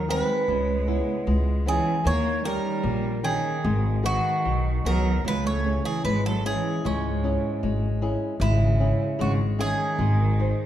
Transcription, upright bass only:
Already playing: D#2
0.48 C#2
1.27 C#2
2.05 D#2
2.84 A#1
3.65 G#1
4.46 B1
4.85 C#2
5.25 C#2
6.04 G#1
6.85 C#2
7.63 G#1
8.40 G#1
9.20 G#1
9.99 G#1

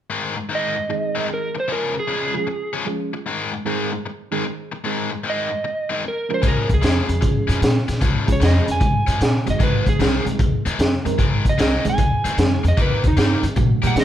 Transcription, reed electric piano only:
0.88 D#3 G#3 C4 D#4 G#4
2.33 F3 G#3 C#4 F4 G#4
2.85 F3 G#3 C#4 F4 G#4
3.65 D#3 G#3 C4 D#4 G#4
4.31 D#3 G#3 C4 D#4 G#4
4.84 D#3 G#3 C4 D#4 G#4
6.29 F3 G#3 C#4 F4 A#4
7.21 F3 G#3 C#4 F4 G#4
8.27 F3 G#3 C#4 F4 G#4
9.45 D#3 G#3 C4 D#4 F#4
9.99 D#3 G#3 C4 D#4 G#4
11.04 D#3 G#3 C4 D#4 A#4
11.84 D#3 G#3 C4 D#4 G#4
12.37 D#3 G#3 C4 D#4 G#4
13.56 D3 F#3 A3 D4 F#4
13.83 D#3 G3 A#3 D#4 G4

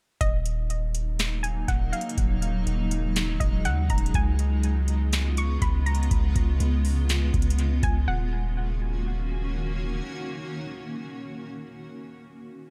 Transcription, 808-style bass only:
0.21 D#1
1.68 D#1
2.18 D#1
2.67 D#1
3.40 D#1
3.65 D#2
3.90 D#1
4.14 C#2
5.62 C#2
6.11 C#2
6.36 C#2
6.60 C#2
7.34 C#2
7.83 C#2
8.08 D#1

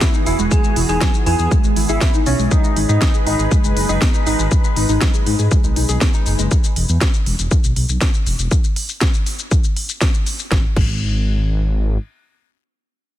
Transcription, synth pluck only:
0.01 B3
0.14 D#4
0.26 E4
0.39 G#3
0.51 G#3
0.64 G#3
0.76 E4
0.89 D#4
1.01 F#3
1.14 G#4
1.26 E4
1.39 G#4
1.51 G#3
1.64 G#3
1.76 E4
1.89 G#4
2.01 B3
2.14 D#4
2.26 E4
2.39 G#3
2.64 G#3
2.76 D#4
2.89 D#4
3.01 F#3
3.14 G#4
3.26 D#4
3.39 G#4
3.51 G#3
3.64 G#3
3.76 D#4
3.89 G#4
4.02 B3
4.14 D#4
4.27 D#4
4.39 G#3
4.64 G#3
4.77 D#4
4.89 D#4
5.02 F#3
5.14 G#4
5.27 D#4
5.39 G#4
5.51 G#3
5.64 G#3
5.76 D#4
5.89 G#4
6.01 B3
6.14 D#4
6.26 D#4
6.39 G#3

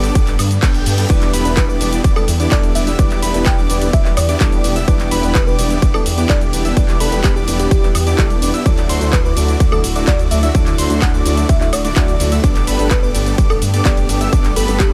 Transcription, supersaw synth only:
Already playing: B3 D4 G4 A4 D5
0.15 B3 D4 G4 A4
0.63 B3 D4 G4 A4 G5
0.74 B3 D4 G4 A4 G5
1.10 D4 E4 D5
1.33 B3 D4 E4 G4 B4
1.69 B3 D4 E4 G4 D5
2.04 B3 D4 E4 G4 D5
2.40 B3 D4 E4 G4 D5
2.87 B3 D4 E4 G4 E5
2.99 B3
3.22 B3 D4 E4 G4 B4
3.58 B3 D4 E4 G4 D5
4.29 B3 D4 E4 G4 D5
4.76 B3 D4 E4 G4 E5
4.88 B3 D4 E4 G4 D5
5.11 B3 D4 E4 G4 B4
5.47 B3 D4 E4 G4 D5
5.82 B3
6.18 B3 D4 E4 G4 D5
6.65 B3 D4 E4 G4 E5
6.77 B3 D4 G4 D5
7.00 B3 D4 E4 G4 B4
7.36 B3 D4 E4 G4 D5
7.71 B3 D4 E4 D5
8.07 B3 D4 E4 G4 D5
8.54 B3 D4 E4 G4 E5
8.66 A3 D4 E4 F#4 D5
8.89 A3 D4 E4 F#4 C5
9.25 A3 D4 E4 F#4 D5
9.60 A3 D4 E4 F#4 D5
9.96 A3 D4 E4 F#4 D5
10.43 A3 D4 E4 F#4 E5
10.55 A3
10.78 A3 D4 E4 F#4 C5
11.14 A3 D4 E4 F#4 D5
11.49 A3 D4 E4 F#4 D5
11.85 A3 D4 E4 F#4 D5
12.32 A3 D4 E4 F#4 E5
12.44 B3 A4
12.67 B3 D4 G4 A4 B4
13.03 B3 D4 G4 A4 D5
13.38 B3 G4 A4
13.74 B3 D4 G4 A4 D5
14.21 B3 D4 G4 A4 E5
14.33 B3 D4 G4 A4 D5
14.56 B3 D4 G4 A4 B4

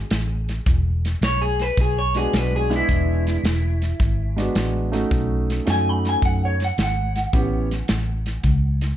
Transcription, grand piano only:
2.15 G#3 B3 D4 F#4
2.69 G#3 B3 D4 E4
4.36 G#3 B3 D4 F#4
4.92 A3 C#4 D#4 F#4
5.65 A3 C#4 D#4 F#4
7.33 B3 C#4 E4 G4

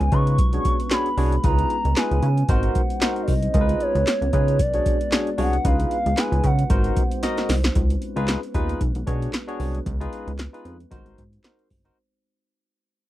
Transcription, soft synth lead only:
Already playing: G#5
0.13 C#6
0.92 B5
1.45 A#5
1.97 G#5
2.50 F#5
3.22 D5
3.29 D#5
3.82 C#5
4.34 C#5
4.61 D5
5.40 F#5
5.66 F5
6.19 G#5
6.46 F#5

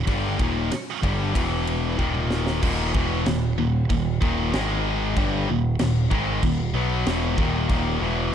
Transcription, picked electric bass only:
0.07 G1
0.40 D#1
1.03 G1
1.35 E1
1.99 D#1
2.63 D#1
2.95 E1
3.26 D#1
3.58 D#1
3.91 D#1
4.22 D#1
4.54 G#1
5.17 G1
5.49 D#1
5.82 D#1
6.11 G#1
6.43 D#1
6.74 B1
7.06 E1
7.39 D#1
7.70 D#1
8.00 E1
8.32 D#1

